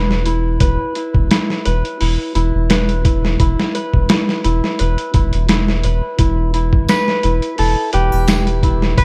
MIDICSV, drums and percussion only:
0, 0, Header, 1, 2, 480
1, 0, Start_track
1, 0, Key_signature, 1, "minor"
1, 0, Tempo, 697674
1, 417, Time_signature, 4, 2, 24, 8
1, 6223, End_track
2, 0, Start_track
2, 0, Title_t, "Drums"
2, 74, Note_on_c, 9, 38, 40
2, 143, Note_off_c, 9, 38, 0
2, 176, Note_on_c, 9, 42, 63
2, 245, Note_off_c, 9, 42, 0
2, 415, Note_on_c, 9, 42, 83
2, 416, Note_on_c, 9, 36, 100
2, 484, Note_off_c, 9, 42, 0
2, 485, Note_off_c, 9, 36, 0
2, 656, Note_on_c, 9, 42, 60
2, 725, Note_off_c, 9, 42, 0
2, 787, Note_on_c, 9, 36, 88
2, 856, Note_off_c, 9, 36, 0
2, 899, Note_on_c, 9, 42, 82
2, 904, Note_on_c, 9, 38, 110
2, 968, Note_off_c, 9, 42, 0
2, 973, Note_off_c, 9, 38, 0
2, 1034, Note_on_c, 9, 38, 40
2, 1103, Note_off_c, 9, 38, 0
2, 1138, Note_on_c, 9, 42, 66
2, 1207, Note_off_c, 9, 42, 0
2, 1272, Note_on_c, 9, 42, 39
2, 1341, Note_off_c, 9, 42, 0
2, 1380, Note_on_c, 9, 46, 79
2, 1449, Note_off_c, 9, 46, 0
2, 1619, Note_on_c, 9, 42, 65
2, 1688, Note_off_c, 9, 42, 0
2, 1856, Note_on_c, 9, 42, 80
2, 1861, Note_on_c, 9, 38, 106
2, 1925, Note_off_c, 9, 42, 0
2, 1930, Note_off_c, 9, 38, 0
2, 1987, Note_on_c, 9, 42, 40
2, 2056, Note_off_c, 9, 42, 0
2, 2097, Note_on_c, 9, 36, 90
2, 2098, Note_on_c, 9, 42, 65
2, 2166, Note_off_c, 9, 36, 0
2, 2167, Note_off_c, 9, 42, 0
2, 2234, Note_on_c, 9, 38, 40
2, 2303, Note_off_c, 9, 38, 0
2, 2337, Note_on_c, 9, 36, 102
2, 2337, Note_on_c, 9, 42, 83
2, 2406, Note_off_c, 9, 36, 0
2, 2406, Note_off_c, 9, 42, 0
2, 2473, Note_on_c, 9, 38, 51
2, 2542, Note_off_c, 9, 38, 0
2, 2579, Note_on_c, 9, 42, 61
2, 2648, Note_off_c, 9, 42, 0
2, 2708, Note_on_c, 9, 36, 84
2, 2776, Note_off_c, 9, 36, 0
2, 2814, Note_on_c, 9, 42, 82
2, 2819, Note_on_c, 9, 38, 111
2, 2883, Note_off_c, 9, 42, 0
2, 2888, Note_off_c, 9, 38, 0
2, 2952, Note_on_c, 9, 38, 36
2, 3021, Note_off_c, 9, 38, 0
2, 3058, Note_on_c, 9, 42, 62
2, 3127, Note_off_c, 9, 42, 0
2, 3192, Note_on_c, 9, 38, 38
2, 3261, Note_off_c, 9, 38, 0
2, 3296, Note_on_c, 9, 42, 84
2, 3365, Note_off_c, 9, 42, 0
2, 3427, Note_on_c, 9, 42, 44
2, 3495, Note_off_c, 9, 42, 0
2, 3534, Note_on_c, 9, 42, 63
2, 3537, Note_on_c, 9, 36, 91
2, 3603, Note_off_c, 9, 42, 0
2, 3606, Note_off_c, 9, 36, 0
2, 3665, Note_on_c, 9, 42, 42
2, 3734, Note_off_c, 9, 42, 0
2, 3774, Note_on_c, 9, 42, 84
2, 3779, Note_on_c, 9, 38, 109
2, 3843, Note_off_c, 9, 42, 0
2, 3848, Note_off_c, 9, 38, 0
2, 3911, Note_on_c, 9, 38, 39
2, 3980, Note_off_c, 9, 38, 0
2, 4014, Note_on_c, 9, 42, 68
2, 4083, Note_off_c, 9, 42, 0
2, 4256, Note_on_c, 9, 42, 77
2, 4257, Note_on_c, 9, 36, 97
2, 4324, Note_off_c, 9, 42, 0
2, 4326, Note_off_c, 9, 36, 0
2, 4498, Note_on_c, 9, 42, 63
2, 4567, Note_off_c, 9, 42, 0
2, 4628, Note_on_c, 9, 36, 82
2, 4697, Note_off_c, 9, 36, 0
2, 4736, Note_on_c, 9, 54, 69
2, 4738, Note_on_c, 9, 42, 78
2, 4742, Note_on_c, 9, 38, 105
2, 4805, Note_off_c, 9, 54, 0
2, 4806, Note_off_c, 9, 42, 0
2, 4811, Note_off_c, 9, 38, 0
2, 4871, Note_on_c, 9, 38, 42
2, 4940, Note_off_c, 9, 38, 0
2, 4976, Note_on_c, 9, 42, 62
2, 5045, Note_off_c, 9, 42, 0
2, 5107, Note_on_c, 9, 42, 39
2, 5176, Note_off_c, 9, 42, 0
2, 5215, Note_on_c, 9, 46, 78
2, 5284, Note_off_c, 9, 46, 0
2, 5454, Note_on_c, 9, 42, 63
2, 5523, Note_off_c, 9, 42, 0
2, 5588, Note_on_c, 9, 81, 81
2, 5657, Note_off_c, 9, 81, 0
2, 5693, Note_on_c, 9, 54, 74
2, 5695, Note_on_c, 9, 42, 88
2, 5699, Note_on_c, 9, 38, 109
2, 5762, Note_off_c, 9, 54, 0
2, 5763, Note_off_c, 9, 42, 0
2, 5768, Note_off_c, 9, 38, 0
2, 5827, Note_on_c, 9, 42, 42
2, 5896, Note_off_c, 9, 42, 0
2, 5936, Note_on_c, 9, 36, 87
2, 5939, Note_on_c, 9, 42, 64
2, 6005, Note_off_c, 9, 36, 0
2, 6008, Note_off_c, 9, 42, 0
2, 6071, Note_on_c, 9, 38, 38
2, 6139, Note_off_c, 9, 38, 0
2, 6175, Note_on_c, 9, 36, 97
2, 6177, Note_on_c, 9, 42, 87
2, 6223, Note_off_c, 9, 36, 0
2, 6223, Note_off_c, 9, 42, 0
2, 6223, End_track
0, 0, End_of_file